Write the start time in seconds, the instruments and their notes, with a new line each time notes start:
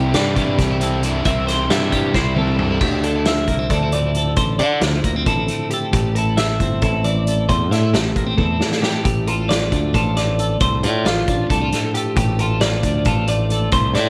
Already playing: fingered electric bass C2, overdriven electric guitar C3 E3 G3 C4 E4, clean electric guitar C3 E4 G4
0.13 fingered electric bass G2, overdriven electric guitar E3 G3 C4 E4, clean electric guitar D5, snare, closed hi-hat
0.35 clean electric guitar G3, overdriven electric guitar G3 C4 E4, kick, closed hi-hat
0.59 fingered electric bass C2, clean electric guitar D4 G4, kick, snare, closed hi-hat
0.70 clean electric guitar E4
0.80 overdriven electric guitar G3 C4 E4, clean electric guitar A4, closed hi-hat
1.03 clean electric guitar G2 E4, overdriven electric guitar C3 E3 G3 C4 E4, closed hi-hat
1.24 fingered electric bass C2, overdriven electric guitar C3 E3 G3 C4 E4, clean electric guitar C3 E5, kick, closed hi-hat
1.47 clean electric guitar C5, snare, closed hi-hat
1.69 fingered electric bass G2, overdriven electric guitar E3 G3 C4 E4, clean electric guitar E5, snare, closed hi-hat
1.91 clean electric guitar G3 G4, overdriven electric guitar G3 C4 E4, kick, closed hi-hat
2.14 fingered electric bass C2, clean electric guitar E4 C5, kick, snare
2.35 overdriven electric guitar G3 C4 E4, clean electric guitar A4, high tom
2.48 mid tom
2.57 clean electric guitar G2 D4, overdriven electric guitar C3 E3 G3 C4 E4, mid tom
2.71 clean electric guitar E4
2.81 fingered electric bass D2, clean electric guitar D3 G4, kick, crash
3.03 clean electric guitar D4 A4, closed hi-hat
3.16 clean electric guitar E4
3.25 clean electric guitar F3 E5, snare, closed hi-hat
3.47 fingered electric bass C2, clean electric guitar A#3, kick, closed hi-hat
3.59 clean electric guitar C4
3.70 fingered electric bass D2, clean electric guitar D4 A4, kick, closed hi-hat
3.83 clean electric guitar E4
3.92 clean electric guitar A2 D5, closed hi-hat
4.15 clean electric guitar A4, closed hi-hat
4.36 fingered electric bass A1, clean electric guitar D3 C5, kick, closed hi-hat
4.59 fingered electric bass D3, clean electric guitar D4 D5, closed hi-hat
4.72 clean electric guitar E4
4.81 fingered electric bass D2, clean electric guitar F3, snare, closed hi-hat
5.04 fingered electric bass D2, clean electric guitar A#3, kick, closed hi-hat
5.16 clean electric guitar C4
5.26 fingered electric bass A1, clean electric guitar E4 A4, kick, closed hi-hat
5.48 clean electric guitar A2, closed hi-hat
5.71 clean electric guitar G4 A4, closed hi-hat
5.93 fingered electric bass A1, clean electric guitar A2 G4, kick, closed hi-hat
6.15 clean electric guitar E4 A4, closed hi-hat
6.37 clean electric guitar A3 E5, snare, closed hi-hat
6.60 fingered electric bass G1, clean electric guitar C4, kick, closed hi-hat
6.82 fingered electric bass A1, clean electric guitar E4 A4, kick, closed hi-hat
7.04 clean electric guitar E3 D5, closed hi-hat
7.27 clean electric guitar A4, closed hi-hat
7.49 fingered electric bass E2, clean electric guitar A2 C5, kick, closed hi-hat
7.71 fingered electric bass A2, clean electric guitar D4 E5, snare, closed hi-hat
7.83 clean electric guitar E4
7.94 fingered electric bass A1, clean electric guitar A3 G4, snare, closed hi-hat
8.16 fingered electric bass A1, clean electric guitar A#3, kick, closed hi-hat
8.27 clean electric guitar C4
8.38 fingered electric bass E2, clean electric guitar E4 A4, kick, high tom
8.59 clean electric guitar E3, snare
8.72 snare
8.82 clean electric guitar G4, snare
8.93 clean electric guitar A4
9.04 fingered electric bass A1, clean electric guitar A2 G4, kick, closed hi-hat
9.27 clean electric guitar F4 A4, closed hi-hat
9.49 clean electric guitar F3 D5, snare, closed hi-hat
9.72 fingered electric bass D2, clean electric guitar D4, kick, closed hi-hat
9.94 fingered electric bass A1, clean electric guitar F4 A4, kick, closed hi-hat
10.16 clean electric guitar A2 D5, snare, closed hi-hat
10.39 clean electric guitar A4, closed hi-hat
10.60 fingered electric bass C2, clean electric guitar A2 C5, kick, closed hi-hat
10.83 fingered electric bass A2, clean electric guitar F4 D5, closed hi-hat
11.05 fingered electric bass A1, clean electric guitar F3 F4, snare, closed hi-hat
11.28 fingered electric bass A1, clean electric guitar D4, kick, closed hi-hat
11.50 fingered electric bass C2, clean electric guitar D4 A4, kick, closed hi-hat
11.62 clean electric guitar F4
11.72 clean electric guitar A2, snare, closed hi-hat
11.94 clean electric guitar G4 A4, closed hi-hat
12.16 fingered electric bass A1, clean electric guitar A2 G4, kick, closed hi-hat
12.39 clean electric guitar F4 A4, closed hi-hat
12.61 clean electric guitar F3 D5, snare, closed hi-hat
12.83 fingered electric bass D2, clean electric guitar D4, kick, closed hi-hat
13.05 fingered electric bass A1, clean electric guitar F4 A4, kick, closed hi-hat
13.28 clean electric guitar A2 D5, closed hi-hat
13.50 clean electric guitar A4, closed hi-hat
13.72 fingered electric bass C2, clean electric guitar A2 C5, kick, closed hi-hat
13.94 fingered electric bass A2, clean electric guitar D4 D5, snare, closed hi-hat